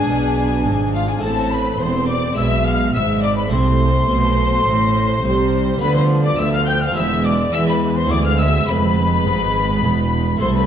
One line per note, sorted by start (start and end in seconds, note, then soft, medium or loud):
0.00 1.17 B3 medium
0.00 1.18 D4 medium
0.00 1.24 D4 medium
0.00 1.19 E4 medium
0.00 0.95 G#4 medium
0.00 0.91 G#5 loud
0.08 0.65 B1 medium
0.08 0.65 B2 medium
0.08 0.62 B2 medium
0.66 1.23 G#1 medium
0.66 1.19 G#2 medium
0.66 1.24 G#2 medium
0.94 1.08 F4 medium
0.94 1.09 F5 medium
0.94 1.10 F5 medium
1.09 1.24 G#4 medium
1.09 1.23 G#5 medium
1.09 1.24 G#5 medium
1.19 1.79 A1 medium
1.19 2.32 A3 medium
1.19 2.33 C4 medium
1.19 2.34 E4 medium
1.19 1.53 A5 medium
1.23 1.76 A2 medium
1.23 1.80 A2 medium
1.23 1.79 C4 medium
1.23 1.52 A4 medium
1.23 1.51 A5 loud
1.51 1.80 B4 medium
1.51 1.80 B5 loud
1.51 1.80 B5 medium
1.79 2.36 E1 medium
1.79 2.36 E2 medium
1.79 2.34 E2 medium
1.79 2.36 C4 medium
1.79 2.10 C5 medium
1.79 2.08 C6 medium
1.79 2.09 C6 loud
2.08 2.37 D5 medium
2.08 2.37 D6 medium
2.08 2.38 D6 loud
2.33 3.46 G#3 soft
2.33 3.47 D4 medium
2.33 3.48 E4 medium
2.37 2.94 B1 medium
2.37 2.94 B2 medium
2.37 2.91 B2 medium
2.37 2.93 G#3 medium
2.37 2.66 E5 medium
2.37 2.44 E6 medium
2.37 2.66 E6 loud
2.66 2.95 F5 medium
2.66 2.95 F6 loud
2.66 2.94 F6 medium
2.93 3.52 G#1 medium
2.93 3.48 G#2 medium
2.93 3.52 G#2 medium
2.93 3.51 G#3 medium
2.93 3.22 E5 medium
2.93 3.23 E6 medium
2.93 3.03 E6 loud
3.23 3.37 D5 medium
3.23 3.29 D6 medium
3.23 3.37 D6 medium
3.36 3.42 B4 medium
3.36 3.44 B5 medium
3.36 3.52 B5 medium
3.48 4.09 C3 medium
3.48 5.75 A3 medium
3.48 5.76 C4 medium
3.48 5.77 E4 medium
3.48 5.76 C5 medium
3.52 4.09 C2 medium
3.52 4.05 C3 medium
3.52 5.21 A3 medium
3.52 5.81 C6 loud
3.52 5.49 C6 loud
4.09 4.66 B1 medium
4.09 4.66 B2 medium
4.09 4.63 B2 medium
4.67 5.23 A1 medium
4.67 5.23 A2 medium
4.67 5.20 A2 medium
5.24 5.80 C2 medium
5.24 5.77 C3 medium
5.24 5.80 C3 medium
5.24 5.80 G3 medium
5.78 6.37 D2 medium
5.78 6.38 D3 medium
5.78 6.38 F3 medium
5.78 6.91 B3 medium
5.78 6.92 F4 medium
5.78 5.95 B4 loud
5.78 6.93 B4 medium
5.78 5.95 B5 loud
5.83 6.35 D3 medium
5.95 6.04 C5 medium
5.95 6.03 C6 medium
5.95 6.24 C6 medium
6.24 6.38 D5 medium
6.24 6.39 D6 loud
6.24 6.41 D6 medium
6.38 6.95 D2 medium
6.38 6.92 D2 medium
6.38 6.95 F3 medium
6.38 6.53 E5 medium
6.38 6.53 E6 loud
6.38 6.52 E6 medium
6.53 6.68 F5 medium
6.53 6.67 F6 medium
6.53 6.68 F6 loud
6.67 6.82 G5 medium
6.67 6.82 G6 loud
6.81 6.97 F5 medium
6.81 6.95 F6 medium
6.81 6.96 F6 loud
6.92 7.52 E1 medium
6.92 7.52 E2 medium
6.92 8.06 B3 medium
6.92 8.06 E4 medium
6.92 8.07 G#4 medium
6.92 7.27 E6 loud
6.92 7.25 E6 loud
6.97 7.50 E2 medium
6.97 7.52 G#3 medium
6.97 7.25 E5 loud
7.25 7.54 D5 medium
7.25 7.33 D6 loud
7.25 7.52 D6 medium
7.53 8.10 E2 medium
7.53 8.10 E3 medium
7.53 8.07 E3 medium
7.53 8.10 G#3 medium
7.53 7.68 E5 loud
7.53 7.67 E6 medium
7.53 7.59 E6 loud
7.68 7.98 B4 medium
7.68 7.97 B5 loud
7.68 7.76 B5 medium
7.96 8.12 C5 medium
7.96 8.12 C6 medium
7.96 8.12 C6 loud
8.07 10.35 B3 medium
8.07 10.36 E4 medium
8.07 10.36 G#4 medium
8.07 8.24 D6 loud
8.11 8.68 D2 medium
8.11 8.65 D2 medium
8.11 8.69 D2 medium
8.11 8.67 G#3 medium
8.11 8.18 D5 loud
8.11 8.26 D6 loud
8.25 8.40 F5 medium
8.25 8.38 F6 medium
8.25 8.40 F6 loud
8.39 8.69 E5 medium
8.39 8.67 E6 medium
8.39 8.68 E6 loud
8.67 9.25 F1 medium
8.67 9.22 F2 medium
8.67 9.25 F2 medium
8.67 10.38 G#3 medium
8.67 10.42 B4 loud
8.67 10.37 B5 medium
8.67 10.41 B5 loud
9.26 9.84 G#1 medium
9.26 9.84 G#2 medium
9.26 9.80 G#2 medium
9.83 10.41 E1 medium
9.83 10.41 E2 medium
9.83 10.37 E2 medium
10.37 10.66 A3 medium
10.37 10.66 E4 medium
10.37 10.66 A4 medium
10.37 10.47 C6 medium
10.41 10.66 C2 medium
10.41 10.66 A3 medium
10.41 10.47 C5 loud
10.41 10.56 C6 loud
10.55 10.66 B4 medium
10.55 10.66 B5 medium